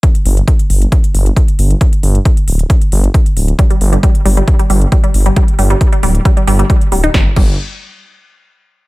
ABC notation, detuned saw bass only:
X:1
M:4/4
L:1/8
Q:1/4=135
K:Cdor
V:1 name="Detuned saw bass" clef=bass
z G,,, z G,,, z G,,, z G,,, | z G,,, z D,,, z G,,, z D,,, | z G,,, z G,,, z G,,, z G,,, | z G,,, z D,,, z G,,, z D,,, |
G,,, G,,, z6 |]